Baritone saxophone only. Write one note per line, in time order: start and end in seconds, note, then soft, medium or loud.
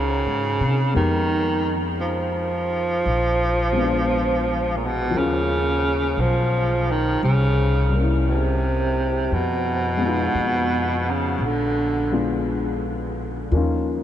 0.00 0.96 C#3 medium
0.96 1.80 D#3 medium
2.01 4.78 F3 medium
4.77 4.87 A#2 soft
4.85 5.19 B2 medium
5.18 6.22 C#3 medium
6.20 6.93 F3 medium
6.91 7.23 D#3 medium
7.24 8.06 C#3 medium
8.28 9.36 C3 medium
9.34 11.12 B2 medium
11.11 11.47 C#3 medium
11.45 12.49 D3 medium